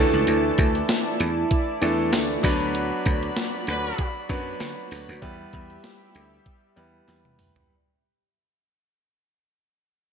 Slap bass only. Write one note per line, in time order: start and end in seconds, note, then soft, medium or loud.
0.13 0.24 C#2 medium
0.27 0.51 D2 loud
0.59 0.82 D2 loud
1.20 1.43 E2 medium
1.82 2.13 E2 medium
2.13 2.36 D2 medium
2.44 2.90 D2 loud
3.06 3.29 D2 loud
3.68 3.91 D2 loud
4.29 4.53 F#2 medium
4.61 4.73 D3 medium
4.92 5.04 D2 loud
5.09 5.19 D2 medium
5.22 5.46 E2 loud
5.54 5.77 E2 loud
6.15 6.38 D2 medium
6.77 7.00 E2 medium
7.08 7.38 E2 medium
7.38 7.62 D2 loud